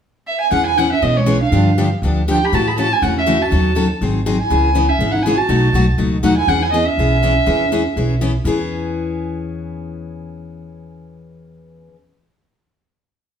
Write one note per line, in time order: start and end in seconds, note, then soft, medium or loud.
0.27 0.40 E5 medium
0.41 0.51 G#5 medium
0.51 0.92 E2 medium
0.51 0.69 E3 medium
0.51 0.70 B3 medium
0.51 0.64 C#4 medium
0.51 0.70 C#4 medium
0.51 0.70 G#4 medium
0.51 0.65 F#5 medium
0.65 0.78 E4 medium
0.65 0.79 G#5 medium
0.76 0.88 E3 medium
0.76 0.88 B3 medium
0.76 0.91 C#4 medium
0.76 0.88 C#4 medium
0.76 0.88 G#4 medium
0.76 0.91 F#5 medium
0.92 1.04 C#4 medium
0.92 1.04 E5 medium
1.02 1.42 B1 medium
1.02 1.20 E3 medium
1.02 1.20 B3 medium
1.02 1.19 B3 medium
1.02 1.20 C#4 medium
1.02 1.21 G#4 medium
1.02 1.18 D#5 medium
1.17 1.41 G#3 medium
1.17 1.41 C#5 medium
1.26 1.37 E3 medium
1.26 1.37 B3 medium
1.26 1.37 C#4 medium
1.26 1.37 G#4 medium
1.42 1.88 D4 medium
1.42 1.88 F5 medium
1.52 1.92 G2 medium
1.52 1.70 D3 medium
1.52 1.70 F3 medium
1.52 1.70 B3 medium
1.52 1.71 D4 medium
1.52 1.70 G4 medium
1.78 1.87 D3 medium
1.78 1.87 F3 medium
1.78 1.88 B3 medium
1.78 1.88 D4 medium
1.78 1.88 G4 medium
2.02 2.42 D2 medium
2.02 2.21 D3 medium
2.02 2.21 F3 medium
2.02 2.21 B3 medium
2.02 2.21 D4 medium
2.02 2.21 G4 medium
2.28 2.38 D3 medium
2.28 2.38 F3 medium
2.28 2.37 B3 medium
2.28 2.45 D4 medium
2.28 2.38 D4 medium
2.28 2.38 G4 loud
2.28 2.46 G5 medium
2.43 2.55 G4 medium
2.43 2.56 B5 medium
2.52 2.92 A2 medium
2.52 2.70 C#3 medium
2.52 2.70 E3 medium
2.52 2.70 A3 medium
2.52 2.70 C#4 medium
2.52 2.69 F#4 medium
2.52 2.71 F#4 medium
2.52 2.69 A5 medium
2.68 2.78 G#4 medium
2.68 2.78 B5 medium
2.78 2.87 C#3 medium
2.78 2.87 E3 medium
2.78 2.87 A3 medium
2.78 2.87 C#4 medium
2.78 2.87 F#4 medium
2.78 2.92 F#4 medium
2.78 2.94 A5 medium
2.90 3.04 E4 medium
2.90 3.04 G#5 medium
3.02 3.42 E2 medium
3.02 3.20 C#3 medium
3.02 3.20 E3 medium
3.02 3.20 A3 medium
3.02 3.15 C#4 medium
3.02 3.21 C#4 medium
3.02 3.20 F#4 medium
3.02 3.16 F#5 medium
3.16 3.40 C#4 medium
3.16 3.44 E5 medium
3.26 3.36 C#3 medium
3.26 3.37 E3 medium
3.26 3.37 A3 medium
3.26 3.37 C#4 medium
3.26 3.37 F#4 loud
3.39 3.89 F#4 medium
3.39 3.91 A5 medium
3.51 3.91 D#2 medium
3.51 3.69 D#3 medium
3.51 3.69 F#3 medium
3.51 3.70 C#4 medium
3.51 3.70 D#4 medium
3.51 3.70 A4 medium
3.75 3.86 D#3 medium
3.75 3.86 F#3 medium
3.75 3.86 C#4 medium
3.75 3.86 D#4 medium
3.75 3.86 A4 medium
4.01 4.41 G#1 medium
4.01 4.19 D#3 medium
4.01 4.19 F#3 medium
4.01 4.20 C4 medium
4.01 4.19 D#4 medium
4.01 4.20 G#4 medium
4.26 4.36 D#3 medium
4.26 4.36 F#3 medium
4.26 4.36 C4 medium
4.26 4.36 D#4 medium
4.26 4.36 G#4 medium
4.39 4.90 E4 medium
4.39 4.91 G#5 medium
4.50 4.90 C#2 medium
4.50 4.68 C#3 medium
4.50 4.69 E3 medium
4.50 4.68 B3 medium
4.50 4.68 C#4 medium
4.50 4.69 G#4 medium
4.75 4.85 C#3 medium
4.75 4.85 E3 medium
4.75 4.85 B3 medium
4.75 4.85 C#4 medium
4.75 4.86 G#4 medium
4.89 5.14 C#4 medium
4.89 5.13 E5 medium
4.99 5.39 G#1 medium
4.99 5.18 C#3 medium
4.99 5.18 E3 medium
4.99 5.18 B3 medium
4.99 5.18 C#4 medium
4.99 5.18 G#4 medium
5.12 5.25 D#4 medium
5.12 5.24 F#5 medium
5.23 5.35 C#3 medium
5.23 5.35 E3 medium
5.23 5.36 C#4 medium
5.23 5.38 E4 medium
5.23 5.39 G#5 medium
5.27 5.36 B3 medium
5.27 5.36 G#4 medium
5.37 5.87 F#4 medium
5.37 5.88 A5 medium
5.49 5.69 B1 medium
5.49 5.67 B2 medium
5.49 5.67 F#3 medium
5.49 5.67 A3 medium
5.49 5.67 D#4 medium
5.49 5.67 F#4 medium
5.73 5.95 B1 medium
5.73 5.84 B2 medium
5.73 5.85 F#3 medium
5.73 5.85 A3 medium
5.73 5.85 D#4 medium
5.73 5.85 F#4 medium
5.98 6.19 C#2 medium
5.98 6.16 B2 medium
5.98 6.17 F#3 medium
5.98 6.16 A3 medium
5.98 6.17 D#4 medium
5.98 6.17 F#4 medium
6.22 6.44 D#2 medium
6.22 6.33 B2 medium
6.22 6.33 F#3 medium
6.22 6.33 A3 medium
6.22 6.36 D#4 medium
6.22 6.34 D#4 medium
6.22 6.34 F#4 medium
6.22 6.36 F#5 medium
6.36 6.49 E4 medium
6.36 6.50 G#5 medium
6.47 6.87 E2 medium
6.47 6.66 E3 medium
6.47 6.66 B3 medium
6.47 6.63 C#4 medium
6.47 6.66 C#4 medium
6.47 6.67 G#4 medium
6.47 6.64 F#5 medium
6.62 6.72 E4 medium
6.62 6.72 G#5 medium
6.72 6.83 E3 medium
6.72 6.88 B3 medium
6.72 6.83 B3 medium
6.72 6.83 C#4 medium
6.72 6.84 G#4 medium
6.72 6.87 D#5 medium
6.86 8.20 C#4 medium
6.86 8.20 E5 medium
6.98 7.37 B1 medium
6.98 7.16 E3 medium
6.98 7.16 B3 medium
6.98 7.16 C#4 medium
6.98 7.16 G#4 medium
7.23 7.32 E3 medium
7.23 7.32 B3 medium
7.23 7.33 C#4 loud
7.23 7.33 G#4 medium
7.46 7.86 E2 medium
7.46 7.64 E3 medium
7.46 7.64 B3 medium
7.46 7.64 C#4 medium
7.46 7.65 G#4 medium
7.72 7.81 E3 medium
7.72 7.82 B3 medium
7.72 7.82 C#4 medium
7.72 7.82 G#4 medium
7.96 8.35 B1 medium
7.96 8.14 E3 medium
7.96 8.14 B3 medium
7.96 8.14 C#4 medium
7.96 8.14 G#4 medium
8.21 8.31 E3 medium
8.21 8.31 B3 loud
8.21 8.31 C#4 medium
8.21 8.31 G#4 medium
8.45 11.87 E2 medium
8.45 11.95 E3 medium
8.45 11.96 B3 medium
8.45 11.97 C#4 medium
8.45 11.97 G#4 medium